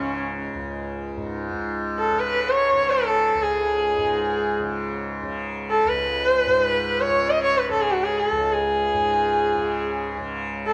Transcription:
0.00 0.54 C#2 medium
0.00 1.17 G#2 medium
0.00 2.12 C#3 medium
0.00 0.23 C#4 medium
0.55 3.35 C#2 medium
1.17 1.51 G#2 medium
1.51 3.98 G#2 medium
1.98 2.20 A4 medium
2.12 2.73 C#3 medium
2.19 2.51 B4 medium
2.49 2.92 C#5 medium
2.73 4.60 C#3 medium
2.90 3.44 A4 medium
3.35 5.84 C#2 medium
3.42 4.56 G#4 medium
3.98 6.46 G#2 medium
4.60 5.23 C#3 soft
5.23 7.08 C#3 medium
5.70 5.89 A4 medium
5.85 8.31 C#2 medium
5.85 7.02 B4 medium
6.47 8.93 G#2 medium
7.00 7.31 C#5 medium
7.08 7.69 C#3 medium
7.30 7.43 D#5 medium
7.44 7.59 C#5 medium
7.58 7.70 B4 medium
7.69 9.55 C#3 medium
7.69 7.82 A4 medium
7.80 7.93 G#4 medium
7.91 8.05 F#4 medium
8.04 8.20 G#4 medium
8.18 8.54 A4 medium
8.31 10.73 C#2 medium
8.52 10.13 G#4 medium
8.94 10.73 G#2 medium
9.55 10.18 C#3 soft
10.18 10.73 C#3 medium
10.66 10.73 A4 medium

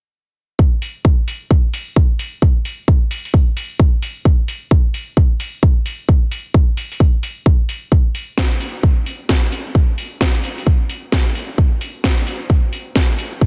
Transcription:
0.59 kick loud
0.82 open hi-hat loud
1.05 kick loud
1.28 open hi-hat loud
1.51 kick loud
1.74 open hi-hat loud
1.96 kick loud
2.19 open hi-hat medium
2.42 kick loud
2.65 open hi-hat loud
2.88 kick loud
3.11 open hi-hat loud
3.25 open hi-hat medium
3.34 kick loud
3.57 open hi-hat loud
3.80 kick loud
4.02 open hi-hat medium
4.25 kick loud
4.48 open hi-hat medium
4.71 kick loud
4.94 open hi-hat medium
5.17 kick loud
5.40 open hi-hat medium
5.63 kick loud
5.86 open hi-hat medium
6.09 kick loud
6.31 open hi-hat medium
6.54 kick loud
6.77 open hi-hat medium
6.92 open hi-hat medium
7.00 kick loud
7.23 open hi-hat medium
7.46 kick loud
7.69 open hi-hat medium
7.92 kick loud
8.15 open hi-hat medium
8.38 kick loud
8.38 snare loud
8.60 open hi-hat medium
8.83 kick loud
9.06 open hi-hat medium
9.29 kick loud
9.29 snare loud
9.52 open hi-hat medium
9.75 kick loud
9.98 open hi-hat loud
10.21 kick loud
10.21 snare loud
10.44 open hi-hat loud
10.58 open hi-hat medium
10.67 kick loud
10.89 open hi-hat loud
11.12 kick loud
11.12 snare loud
11.35 open hi-hat medium
11.58 kick loud
11.81 open hi-hat loud
12.04 kick loud
12.04 snare loud
12.27 open hi-hat loud
12.50 kick loud
12.73 open hi-hat loud
12.96 kick loud
12.96 snare loud
13.18 open hi-hat loud
13.41 kick loud

